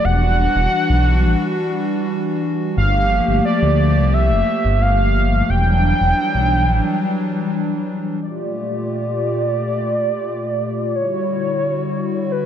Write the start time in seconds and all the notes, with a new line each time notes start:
0.04 E1 E3 G3 D4 F#4 F#5
0.56 E1
0.90 B1
1.24 A1
2.77 G1 F3 A3 A#3 G4 F5
3.28 G1
3.45 D5
3.62 D2
3.97 C2
4.13 E5
4.31 F1
4.65 G1
4.82 F5
5.50 E1 E3 F#3 G3 D4 G5
6.01 E1
6.35 B1
6.69 A1
8.23 A#2 A3 F4 G4 D5
10.95 D3 G3 E4 F#4 C#5
12.32 B4